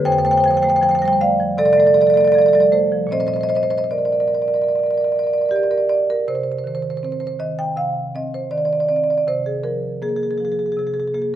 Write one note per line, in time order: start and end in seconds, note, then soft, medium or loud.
0.05 1.53 F2 loud
0.05 0.13 C5 loud
0.05 0.12 G5 loud
0.12 0.19 C5 medium
0.12 0.18 G5 medium
0.18 0.26 C5 medium
0.18 0.25 G5 loud
0.25 0.56 A3 medium
0.25 0.33 C5 medium
0.25 0.31 G5 loud
0.31 0.40 C5 medium
0.31 0.37 G5 loud
0.37 0.48 C5 medium
0.37 0.44 G5 medium
0.44 0.76 F3 medium
0.44 0.54 C5 medium
0.44 0.51 G5 loud
0.51 0.62 C5 medium
0.51 0.57 G5 loud
0.57 0.63 G5 loud
0.62 0.94 A3 medium
0.62 0.69 C5 medium
0.62 0.70 G5 loud
0.69 0.76 C5 medium
0.69 0.76 G5 loud
0.76 0.83 C5 medium
0.76 0.83 G5 medium
0.82 1.12 F3 medium
0.82 0.91 C5 medium
0.82 0.89 G5 loud
0.89 0.99 C5 medium
0.89 0.95 G5 medium
0.95 1.06 C5 medium
0.95 1.02 G5 loud
1.02 1.21 G3 medium
1.02 1.13 C5 medium
1.02 1.08 G5 medium
1.08 1.15 G5 loud
1.13 1.16 C5 medium
1.21 1.51 A3 medium
1.21 1.56 D5 medium
1.21 1.57 F5 loud
1.40 1.70 F3 medium
1.58 1.88 C3 medium
1.58 1.66 A4 medium
1.58 1.65 D5 loud
1.65 1.73 A4 medium
1.65 1.73 D5 loud
1.73 1.80 A4 medium
1.73 1.80 D5 loud
1.78 2.08 A3 medium
1.78 1.87 A4 medium
1.78 1.87 D5 loud
1.87 1.94 A4 medium
1.87 1.94 D5 loud
1.94 2.27 F3 medium
1.94 2.01 A4 medium
1.94 2.02 D5 medium
2.01 2.07 A4 medium
2.01 2.10 D5 loud
2.07 2.14 A4 medium
2.07 2.17 D5 medium
2.14 2.46 A3 medium
2.14 2.21 A4 medium
2.14 2.25 D5 loud
2.21 2.28 A4 medium
2.21 2.32 D5 loud
2.28 2.34 A4 medium
2.32 2.66 F3 medium
2.32 2.42 A4 medium
2.32 2.39 D5 loud
2.39 2.48 A4 medium
2.39 2.46 D5 medium
2.46 2.55 A4 medium
2.46 2.53 D5 loud
2.53 2.73 G3 medium
2.53 2.62 A4 medium
2.53 2.60 D5 loud
2.60 2.69 A4 medium
2.60 2.69 D5 loud
2.72 3.04 A3 medium
2.72 3.09 A4 medium
2.72 3.10 C5 medium
2.92 3.08 F3 medium
3.07 6.22 A#2 medium
3.07 6.23 F3 medium
3.11 6.24 C4 medium
3.11 3.20 C5 medium
3.11 3.20 D#5 loud
3.20 3.27 C5 medium
3.20 3.28 D#5 medium
3.27 3.34 C5 medium
3.27 3.36 D#5 medium
3.34 3.41 C5 medium
3.34 3.43 D#5 medium
3.41 3.49 C5 medium
3.41 3.50 D#5 medium
3.49 3.55 C5 medium
3.49 3.56 D#5 medium
3.55 3.63 C5 medium
3.55 3.63 D#5 medium
3.63 3.70 C5 medium
3.63 3.71 D#5 medium
3.70 3.78 C5 medium
3.70 3.78 D#5 medium
3.78 3.84 C5 medium
3.78 3.88 D#5 medium
3.84 3.87 C5 medium
3.91 3.98 A#4 medium
3.91 3.98 D5 medium
3.98 4.05 A#4 soft
3.98 4.05 D5 medium
4.05 4.13 A#4 soft
4.05 4.12 D5 medium
4.12 4.20 A#4 soft
4.12 4.20 D5 medium
4.20 4.28 A#4 soft
4.20 4.28 D5 medium
4.28 4.35 A#4 soft
4.28 4.35 D5 medium
4.35 4.42 A#4 soft
4.35 4.42 D5 medium
4.42 4.48 A#4 soft
4.42 4.48 D5 medium
4.48 4.56 A#4 soft
4.48 4.54 D5 medium
4.54 4.64 A#4 soft
4.54 4.62 D5 medium
4.62 4.71 A#4 soft
4.62 4.69 D5 medium
4.69 4.79 A#4 soft
4.69 4.75 D5 medium
4.75 4.86 A#4 soft
4.75 4.83 D5 medium
4.83 4.94 A#4 soft
4.83 4.91 D5 medium
4.91 5.01 A#4 soft
4.91 4.98 D5 medium
4.98 5.08 A#4 soft
4.98 5.04 D5 medium
5.04 5.12 D5 medium
5.08 5.16 A#4 soft
5.08 5.19 D5 medium
5.16 5.24 A#4 soft
5.16 5.27 D5 medium
5.24 5.31 A#4 soft
5.24 5.33 D5 medium
5.31 5.38 A#4 soft
5.31 5.41 D5 medium
5.38 5.46 A#4 soft
5.38 5.49 D5 medium
5.46 5.52 A#4 soft
5.46 5.56 D5 medium
5.51 5.70 G4 medium
5.51 5.59 A#4 soft
5.56 5.70 A#4 soft
5.56 5.63 D5 medium
5.63 5.71 D5 medium
5.71 5.90 A#4 medium
5.71 5.78 D5 medium
5.78 5.85 D5 medium
5.89 6.09 D5 medium
6.10 6.29 A#4 medium
6.28 7.74 C3 medium
6.28 6.35 C5 medium
6.35 6.43 C5 medium
6.43 6.52 C5 medium
6.52 6.58 C5 medium
6.58 6.67 C5 medium
6.64 7.25 D#3 medium
6.64 6.75 C5 medium
6.75 6.82 C5 medium
6.82 6.90 C5 medium
6.90 6.97 C5 medium
6.97 7.05 C5 medium
7.03 7.63 C4 soft
7.03 7.12 C5 medium
7.12 7.20 C5 medium
7.20 7.27 C5 medium
7.27 7.37 C5 medium
7.40 8.00 D#3 soft
7.40 7.59 D#5 medium
7.59 7.78 G5 medium
7.77 9.22 C3 medium
7.77 8.13 F5 medium
8.15 8.74 C4 soft
8.15 8.34 D#5 medium
8.34 8.53 C5 medium
8.51 9.11 D#3 soft
8.51 8.58 D5 medium
8.58 8.65 D5 medium
8.65 8.73 D5 medium
8.73 8.80 D5 medium
8.80 8.89 D5 medium
8.89 9.27 C4 soft
8.89 8.96 D5 medium
8.96 9.04 D5 medium
9.04 9.10 D5 medium
9.10 9.18 D5 medium
9.18 9.23 D5 medium
9.27 10.74 C3 medium
9.27 9.46 C5 medium
9.46 9.65 G#4 medium
9.64 10.24 F3 soft
9.64 10.00 A#4 medium
10.02 10.62 A#3 soft
10.02 10.09 G#4 medium
10.09 10.16 G#4 medium
10.16 10.23 G#4 medium
10.23 10.31 G#4 medium
10.31 10.38 G#4 medium
10.38 11.00 F3 soft
10.38 10.45 G#4 medium
10.45 10.52 G#4 medium
10.52 10.59 G#4 medium
10.59 10.66 G#4 medium
10.66 10.72 G#4 medium
10.72 10.79 G#4 medium
10.77 11.36 C3 medium
10.77 10.87 G#4 medium
10.87 10.94 G#4 medium
10.94 11.00 G#4 medium
11.00 11.07 G#4 medium
11.07 11.14 G#4 medium
11.14 11.36 A#3 soft
11.14 11.22 G#4 medium
11.22 11.30 G#4 medium